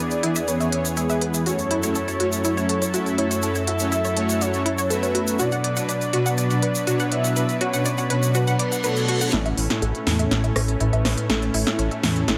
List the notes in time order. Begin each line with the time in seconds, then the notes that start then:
Already playing: E2 E3 B3 G#4 D5
0.11 closed hi-hat, shaker
0.23 E3 B3 E4 G#4, closed hi-hat
0.36 E5, closed hi-hat, shaker
0.48 B4 C#5, closed hi-hat, shaker
0.60 E3 B3 E4 G#4 E5, closed hi-hat, shaker
0.72 E3 B3 E4 B4 C#5, closed hi-hat
0.85 closed hi-hat, shaker
0.97 E4 G#4, closed hi-hat, shaker
1.10 E3 B3 E4 B4 E5, closed hi-hat, shaker
1.21 B4, closed hi-hat
1.34 E5, closed hi-hat, shaker
1.46 F#2 F#3 A3 C#4 E4 F#4 A4 C#5, closed hi-hat, shaker
1.59 closed hi-hat, shaker
1.71 E4, closed hi-hat
1.83 A3 C#4 E4 F#4 C#5, closed hi-hat, shaker
1.95 A4 C#5, closed hi-hat, shaker
2.08 C#5, closed hi-hat, shaker
2.20 A3 C#4 E4 F#4 C#5, closed hi-hat
2.32 closed hi-hat, shaker
2.44 E4 C#5, closed hi-hat, shaker
2.57 A3 C#4 E4 F#4 C#5, closed hi-hat, shaker
2.69 A4, closed hi-hat
2.82 C#5, closed hi-hat, shaker
2.94 A3 C#4 E4 F#4 E5, closed hi-hat, shaker
3.06 closed hi-hat, shaker
3.18 E4 C#5, closed hi-hat
3.31 C#5, closed hi-hat, shaker
3.42 A3 C#4 E4 F#4 A4 C#5, closed hi-hat, shaker
3.55 C#5, closed hi-hat, shaker
3.67 F#4 E5, closed hi-hat
3.79 A3 C#4 E4 F#4 C#5, closed hi-hat, shaker
3.92 E4, closed hi-hat, shaker
4.05 C#5, closed hi-hat, shaker
4.17 A3 C#4 E4 F#4 A4 C#5, closed hi-hat
4.29 C#5, closed hi-hat, shaker
4.41 F#4 C#5, closed hi-hat, shaker
4.54 A3 C#4 E4 F#4 C#5, closed hi-hat, shaker
4.66 E4, closed hi-hat
4.78 C#5, closed hi-hat, shaker
4.90 A3 C#4 E4 F#4 A4 B4 E5, closed hi-hat, shaker
5.03 C#5, closed hi-hat, shaker
5.15 F#4, closed hi-hat
5.27 closed hi-hat, shaker
5.39 B2 D4 F#4 B4 D5, closed hi-hat, shaker
5.52 F#5, closed hi-hat, shaker
5.64 D5, closed hi-hat
5.76 B2 D4 F#4 B4 F#5, closed hi-hat, shaker
5.89 B4 D5, closed hi-hat, shaker
6.01 closed hi-hat, shaker
6.13 B2 D4 F#4 B4, closed hi-hat
6.26 F#5, closed hi-hat, shaker
6.38 D5, closed hi-hat, shaker
6.50 B2 D4 F#4 B4 F#5, closed hi-hat, shaker
6.62 B4, closed hi-hat
6.75 closed hi-hat, shaker
6.87 B2 D4 F#4 C#5, closed hi-hat, shaker
7.00 F#5, closed hi-hat, shaker
7.12 D5 E5, closed hi-hat
7.24 F#5, closed hi-hat, shaker
7.36 B2 D4 F#4 B4, closed hi-hat, shaker
7.49 closed hi-hat, shaker
7.61 F#4 C#5, closed hi-hat
7.73 B2 D4 F#4 B4 F#5, closed hi-hat, shaker
7.85 D5, closed hi-hat, shaker
7.98 F#5, closed hi-hat, shaker
8.10 B2 D4 F#4 B4, closed hi-hat
8.23 closed hi-hat, shaker
8.34 F#4 B4, closed hi-hat, reverse cymbal, shaker
8.47 B2 D4 F#4 B4 F#5, closed hi-hat, shaker
8.59 D5, closed hi-hat
8.72 F#5, closed hi-hat, shaker
8.84 B2 D4 F#4 A4 B4 C#5, closed hi-hat, shaker
8.96 closed hi-hat, shaker
9.08 F#4, closed hi-hat
9.21 F#5, closed hi-hat, shaker
9.33 A1 A2 A3 C#4 E4 A4, snare, closed hi-hat, riser
9.46 E5, closed hi-hat
9.58 A1 C#5, open hi-hat
9.70 A2 C#4 E4 A4 E5, snare, closed hi-hat
9.82 A1 A4, closed hi-hat
9.95 closed hi-hat
10.07 E2 A2 C#4 E4 A4, snare, open hi-hat
10.19 E5, closed hi-hat
10.31 A1 C#5, snare, closed hi-hat
10.44 A2 C#4 E4 A4 E5, closed hi-hat
10.56 A1 A4, cross-stick, open hi-hat
10.68 closed hi-hat
10.80 A1 A2 C#4 E4 B4, closed hi-hat
10.93 A1 E5, closed hi-hat
11.05 A1 C#5, cross-stick, snare, open hi-hat
11.18 E5, closed hi-hat
11.30 A1 A2 C#4 E4 A4, snare, closed hi-hat
11.42 closed hi-hat
11.54 A1 E4, open hi-hat
11.67 A2 C#4 E4 A4 E5, snare, closed hi-hat
11.79 A1 C#5, closed hi-hat
11.91 E5, closed hi-hat
12.03 E2 A2 C#4 E4 A4, snare, open hi-hat
12.16 closed hi-hat
12.28 A1 E4, snare, closed hi-hat